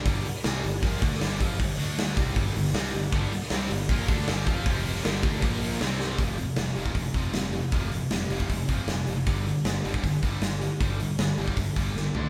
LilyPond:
<<
  \new Staff \with { instrumentName = "Tonewheel organ" } { \time 4/4 \key g \minor \tempo 4 = 156 <g d' a'>1~ | <g d' a'>8 <a' d''>4 <g a'>2~ <g a'>8~ | <g a'>1 | <f c' g'>4 <g d' a'>4 <bes f' c''>4 <c' g' d''>4 |
r1 | r1 | r1 | r1 | }
  \new Staff \with { instrumentName = "Distorted electric guitar" } { \clef bass \time 4/4 \key g \minor r1 | r1 | <g, d g>8 r8 <c g c'>8 <g, d>8 <bes, f bes>8 <d a d'>8 <g, d g>8 <f c' f'>8 | <f, c f>4 <g, d g>8 <d a d'>8 <bes, f bes>4 <c g c'>4 |
r1 | r1 | r1 | r1 | }
  \new Staff \with { instrumentName = "Distorted electric guitar" } { \clef bass \time 4/4 \key g \minor <g, d g>8 r8 <c g c'>8 <g, d>8 <bes, f bes>8 <d a d'>8 <g, d g>8 <f c' f'>8 | <g, d>8 <d a d'>4 <c g c'>8 <g, d g>8 <g, d>8 <c g c'>8 <g, d>8 | <g, d g>8 r8 <c g c'>8 <g, d>8 <bes, f bes>8 <d a d'>8 <g, d g>8 <f c' f'>8 | <f, c f>4 <g, d g>8 <d a d'>8 <bes, f bes>4 <c g c'>4 |
<f, c f>8 <f, c>8 <f, c>8 <f, c f>8 <f, c>8 <f, c f>8 <f, c>8 <f, c>8 | <f, c f>8 <f, c>8 <f, c>8 <f, c f>8 <f, c>8 <f, c f>8 <f, c>8 <f, c>8 | <g, d g>8 <g, d>8 <g, d>8 <g, d g>8 <g, d>8 <g, d g>8 <g, d>8 <g, d>8 | <g, d g>8 <g, d>8 <g, d>8 <g, d g>8 <g, d>8 <g, d g>8 <g, d>8 <d a d'>8 | }
  \new Staff \with { instrumentName = "Distorted electric guitar" } { \clef bass \time 4/4 \key g \minor <g, d g>8 r8 <c g c'>8 <g, d>8 <bes, f bes>8 <d a d'>8 <g, d g>8 <f c' f'>8 | <g, d>8 <d a d'>4 <c g c'>8 <g, d g>8 <g, d>8 <c g c'>8 <g, d>8 | <g, d g>8 r8 <c g c'>8 <g, d>8 <bes, f bes>8 <d a d'>8 <g, d g>8 <f c' f'>8 | <f, c f>4 <g, d g>8 <d a d'>8 <bes, f bes>4 <c g c'>4 |
<f, c f>8 <f, c>8 <f, c>8 <f, c f>8 <f, c>8 <f, c f>8 <f, c>8 <f, c>8 | <f, c f>8 <f, c>8 <f, c>8 <f, c f>8 <f, c>8 <f, c f>8 <f, c>8 <f, c>8 | <g, d g>8 <g, d>8 <g, d>8 <g, d g>8 <g, d>8 <g, d g>8 <g, d>8 <g, d>8 | <g, d g>8 <g, d>8 <g, d>8 <g, d g>8 <g, d>8 <g, d g>8 <g, d>8 <d a d'>8 | }
  \new Staff \with { instrumentName = "Fingered electric bass" } { \clef bass \time 4/4 \key g \minor g,,8 r8 c,8 g,,8 bes,,8 d,8 g,,8 f,8 | g,,8 d,4 c,8 g,,8 g,,8 c,8 g,,8 | g,,8 r8 c,8 g,,8 bes,,8 d,8 g,,8 f,8 | f,,4 g,,8 d,8 bes,,4 c,4 |
f,,4 f,,8 f,,8 f,,8 f,,8 f,,4 | f,,4 f,,8 f,,8 f,,8 f,,8 f,,8 fis,,8 | g,,4 g,,8 g,,8 g,,8 g,,8 g,,4 | g,,4 g,,8 g,,8 g,,8 g,,8 g,,8 d,8 | }
  \new DrumStaff \with { instrumentName = "Drums" } \drummode { \time 4/4 <hho bd>8 hho8 <hho sn>8 hho8 <hho bd>8 <hho bd>16 sn16 <hho sn>8 <hho bd>8 | <hho bd>8 hho8 <hho sn>8 <hho bd>8 <hho bd>8 hho16 sn16 <hho sn>8 hho8 | <hho bd>8 hho16 sn16 <hho sn>8 hho8 <hho bd>8 <hho bd>16 sn16 <hho sn>8 <hho bd>8 | <hho bd>8 hho16 sn16 <hho sn>8 <hho bd>8 <hho bd>8 hho16 sn16 <hho sn>8 sn8 |
<hho bd>8 hho8 <hho sn>8 hho16 bd16 <hho bd>8 <hho bd>8 <hho sn>8 hho8 | <hho bd>8 hho8 <hho sn>8 hho16 bd16 <hho bd>8 <hho bd>8 <hho sn>8 hho8 | <hho bd>8 hho8 <hho sn>8 hho16 bd16 <hho bd>8 <hho bd>8 <hho sn>8 hho8 | <hho bd>8 hho8 <hho sn>8 hho16 bd16 <hho bd>8 <hho bd>8 sn8 tomfh8 | }
>>